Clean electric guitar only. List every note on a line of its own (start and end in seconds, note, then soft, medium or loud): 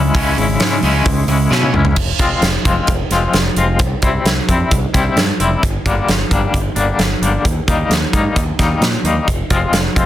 0.00 0.13 C#3 medium
0.00 0.14 G#3 medium
0.00 0.15 C#4 medium
0.00 0.17 E4 medium
0.14 0.59 C#3 medium
0.14 0.40 G#3 medium
0.14 0.38 C#4 medium
0.14 0.36 E4 medium
0.37 0.60 G#3 soft
0.37 0.61 C#4 medium
0.37 0.62 E4 medium
0.60 1.50 C#3 medium
0.60 1.31 G#3 medium
0.60 1.29 C#4 medium
0.60 1.27 E4 medium
1.29 1.52 G#3 medium
1.29 1.53 C#4 medium
1.29 1.53 E4 medium
1.52 1.96 C#3 medium
1.52 1.76 G#3 medium
1.52 1.75 C#4 medium
1.52 1.73 E4 medium
1.74 1.97 G#3 medium
1.74 1.96 C#4 medium
1.74 1.95 E4 medium
2.20 2.50 F3 medium
2.20 2.50 G#3 medium
2.20 2.50 C4 medium
2.20 2.49 F4 medium
2.65 2.95 F3 medium
2.65 2.95 G#3 medium
2.65 2.95 C4 medium
2.65 2.95 F4 medium
3.12 3.42 F3 medium
3.12 3.41 G#3 medium
3.12 3.41 C4 medium
3.12 3.41 F4 medium
3.57 3.80 F3 medium
3.57 3.80 G#3 medium
3.57 3.80 C4 medium
3.57 3.80 F4 medium
4.03 4.33 C3 medium
4.03 4.33 G3 medium
4.03 4.32 C4 medium
4.03 4.32 E4 medium
4.48 4.78 C3 medium
4.48 4.78 G3 medium
4.48 4.78 C4 medium
4.48 4.78 E4 medium
4.94 5.24 C3 medium
4.94 5.24 G3 medium
4.94 5.23 C4 medium
4.94 5.23 E4 medium
5.40 5.63 C3 medium
5.40 5.63 G3 medium
5.40 5.63 C4 medium
5.40 5.62 E4 medium
5.86 6.16 D3 medium
5.86 6.16 G3 medium
5.86 6.16 A#3 medium
5.86 6.15 D4 medium
6.31 6.61 D3 medium
6.31 6.61 G3 medium
6.31 6.60 A#3 medium
6.31 6.61 D4 medium
6.76 7.06 D3 medium
6.76 7.06 G3 medium
6.76 7.06 A#3 medium
6.76 7.06 D4 medium
7.22 7.45 D3 medium
7.22 7.45 G3 medium
7.22 7.45 A#3 medium
7.22 7.45 D4 medium
7.68 7.98 D#3 medium
7.68 7.98 G3 medium
7.68 7.98 A#3 medium
7.68 7.97 D#4 medium
8.13 8.44 D#3 medium
8.13 8.43 G3 medium
8.13 8.43 A#3 medium
8.13 8.43 D#4 medium
8.59 8.89 D#3 medium
8.59 8.89 G3 medium
8.59 8.89 A#3 medium
8.59 8.89 D#4 medium
9.05 9.28 D#3 medium
9.05 9.28 G3 medium
9.05 9.28 A#3 medium
9.05 9.28 D#4 medium
9.50 9.81 F3 medium
9.50 9.81 G#3 medium
9.50 9.80 C4 medium
9.50 9.80 F4 medium
9.95 10.06 F3 medium
9.95 10.06 G#3 medium
9.95 10.06 C4 medium
9.95 10.06 F4 medium